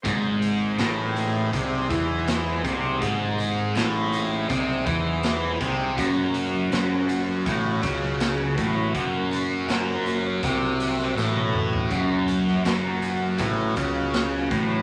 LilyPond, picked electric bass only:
\new Staff \with { instrumentName = "Picked electric bass" } { \clef bass \time 4/4 \tempo 4 = 81 gis,,4 a,,4 bis,,8 e,4 bis,,8 | gis,,4 a,,4 bis,,8 e,4 bis,,8 | fis,,4 fis,,4 a,,8 cis,4 a,,8 | fis,,4 fis,,4 bis,,4 a,,4 |
fis,,4 fis,,4 a,,8 cis,4 a,,8 | }